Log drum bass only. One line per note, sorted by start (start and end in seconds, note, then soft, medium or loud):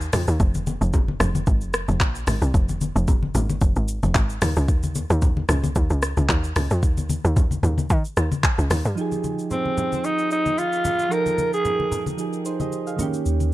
0.13 0.26 F2 medium
0.28 0.39 D#2 medium
0.40 0.77 F1 loud
0.81 1.16 F1 loud
1.20 1.44 F1 loud
1.47 1.63 G#1 medium
1.62 1.85 F1 loud
1.88 2.02 F1 loud
2.00 2.24 A#1 loud
2.27 2.40 G#1 medium
2.42 2.53 C2 loud
2.54 2.91 F1 loud
2.96 3.30 F1 loud
3.35 3.58 G#1 medium
3.62 3.74 F1 loud
3.76 4.00 G#1 medium
4.03 4.14 F1 medium
4.15 4.39 G#1 loud
4.42 4.55 D#2 loud
4.57 4.70 C#2 loud
4.69 5.05 D#2 loud
5.10 5.44 D#2 loud
5.49 5.73 C#2 loud
5.76 5.89 D#2 medium
5.90 6.14 C#2 medium
6.17 6.28 C#2 medium
6.29 6.53 D#2 loud
6.56 6.69 C#2 loud
6.71 6.84 F2 medium
6.83 7.19 D#2 loud
7.25 7.59 D#2 medium
7.63 7.87 D#2 medium
7.90 8.03 D#3 loud
8.17 8.30 D#2 medium
8.58 8.69 C#2 medium
8.71 8.83 D#2 loud
8.85 8.96 G2 medium